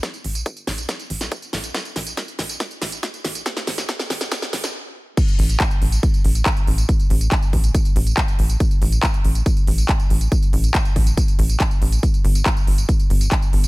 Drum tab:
CC |----------------|----------------|----------------|x---------------|
HH |xxoxxxoxxxoxxxox|xxoxxxoxxxoxxxox|xxoxxxoxxxox----|xxoxxxoxxxoxxxox|
TB |xx-xxx-xxx-xxx-x|xx-xxx-xxx-xxx-x|xx-xxx-xxx-x----|xx-xxx-xxx-xxx-x|
CP |----------------|----------------|----------------|----x-------x---|
SD |o-----o-o--o--o-|o-o-o-o-o-o-o-o-|oooooooooooo----|----------------|
BD |o---o-o-o---o---|o---o---o---o---|o---o-o-o-------|o---o---o---o---|

CC |----------------|----------------|----------------|----------------|
HH |xxoxxxoxxxoxxxox|xxoxxxoxxxoxxxox|xxoxxxoxxxoxxxox|xxoxxxoxxxoxxxox|
TB |xx-xxx-xxx-xxx-x|xx-xxx-xxx-x-x-x|xx-xxx-xxx-xxx-x|xx-xxx-xxx-xxx-x|
CP |----x-------x---|----x-------x---|----x-------x---|----x-------x---|
SD |----------------|----------------|----------------|----------------|
BD |o---o-o-o---o---|o---o---o---o---|o---o-o-o---o---|o---o---o---o---|